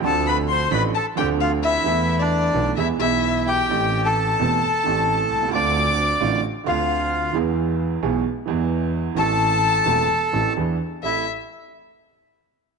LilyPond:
<<
  \new Staff \with { instrumentName = "Violin" } { \time 4/4 \key a \minor \tempo 4 = 131 a''8 b''8 c'''8 b''8 a''8 g''8 f''8 e''8~ | e''8. d''4~ d''16 e''8 e''4 g''8~ | g''8. a''2.~ a''16 | d'''2 r8 f''4. |
r1 | a''2. r4 | e''8 r2. r8 | }
  \new Staff \with { instrumentName = "Bandoneon" } { \time 4/4 \key a \minor a'8 b'8 c''8 b'8 a'8 g'8 f'8 e'8~ | e'8. d'4~ d'16 e'8 e'4 g'8~ | g'8. a'2.~ a'16 | d''2 r8 f'4. |
r1 | a'2. r4 | e'8 r2. r8 | }
  \new Staff \with { instrumentName = "Upright piano" } { \clef bass \time 4/4 \key a \minor << { <d, d f c' d' a'>4. <a,, a, f c' d' a'>8 r8 <d, d f c' d' a'>4. | <e, e a b a'>4. <b,, b, e a b a'>8 <e, e gis b gis'>8 <b,, b, e gis b gis'>4. | <a,, a, e a c' g'>4. <e,, e, e a c' g'>8 r8 <a,, a, e a c' g'>4. | <d, d a c' f'>4. <a,, a, d a c' f'>8 r8 <d, d a c' f'>4. |
<e, e gis b gis'>4. <b,, b, e gis b gis'>8 r8 <e, e gis b gis'>4. | <a,, a, e a c' a'>4. <e,, e, e a c' a'>8 r8 <a,, a, e a c' a'>8 <e, e b d' gis'>8 r8 | <a,, c' e' a'>8 r2. r8 | } \\ { r1 | r1 | r2. r8 r32 b,,32 c,32 cis,32 | r1 |
r1 | r1 | r1 | } >> }
  \new Staff \with { instrumentName = "Double bass" } { \clef bass \time 4/4 \key a \minor d,4. a,,8 r8 d,4. | e,4. b,,8 e,8 b,,4. | a,,4. e,,8 r8 a,,4 c,8 | d,4. a,,8 r8 d,4. |
e,4. b,,8 r8 e,4. | a,,4. e,,8 r8 a,,8 e,8 r8 | a,,8 r2. r8 | }
>>